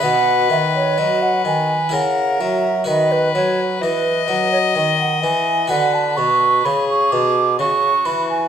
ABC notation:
X:1
M:3/4
L:1/16
Q:1/4=64
K:Bmix
V:1 name="Flute"
f2 e c d f g2 f2 e2 | d B c2 B3 c d f g2 | [K:Bdor] f a c'2 b c' d'2 c'2 b g |]
V:2 name="Violin"
B8 ^A4 | B4 d8 | [K:Bdor] B4 G4 F4 |]
V:3 name="Harpsichord"
[DB]8 [E^A]4 | [FB]12 | [K:Bdor] [FB]12 |]
V:4 name="Harpsichord" clef=bass
B,,2 D,2 F,2 D,2 C,2 F,2 | D,2 F,2 E,2 F,2 D,2 E,2 | [K:Bdor] D,2 B,,2 C,2 B,,2 C,2 E,2 |]
V:5 name="Bassoon" clef=bass
B,,2 D,2 F,2 D,2 C,2 F,2 | D,2 F,2 E,2 F,2 D,2 E,2 | [K:Bdor] D,2 B,,2 C,2 B,,2 C,2 E,2 |]